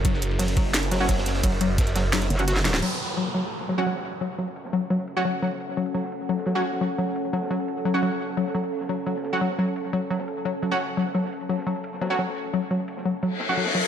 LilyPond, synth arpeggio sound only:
\new Staff \with { instrumentName = "Synth arpeggio sound" } { \clef bass \time 4/4 \key fis \minor \tempo 4 = 173 fis8 r8 fis8 fis8 r8 fis8 fis8 r8 | fis8 fis8 r8 fis8 fis8 r8 fis'8 fis8 | fis8 r8 fis8 fis8 r8 fis8 fis8 r8 | fis8 fis8 r8 fis8 fis8 r8 fis8 fis8 |
r8 fis8 fis8 r8 fis8 fis8 r8 fis8 | fis8 r8 fis8 fis8 r8 fis8 fis8 r8 | fis8 fis8 r8 fis8 fis8 r8 fis8 fis8 | r8 fis8 fis8 r8 fis8 fis8 r8 fis8 |
fis8 r8 fis8 fis8 r8 fis8 fis8 r8 | fis8 fis8 r8 fis8 fis8 r8 fis8 fis8 | }